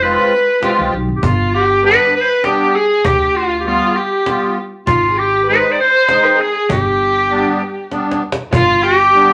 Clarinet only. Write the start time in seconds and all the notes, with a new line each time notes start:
0.03 B4
1.16 G4
1.24 F4
1.55 G4
1.86 B4
2.16 B4
2.22 C5
2.30 B4
2.45 G4
2.76 G#4
3.06 G4
3.36 F4
3.60 G4
3.67 F4
3.89 G#4
3.97 G4
4.87 F4
5.19 G4
5.49 B4
5.72 D5
5.80 C5
6.41 G#4
6.72 G4
8.53 F4
8.83 G4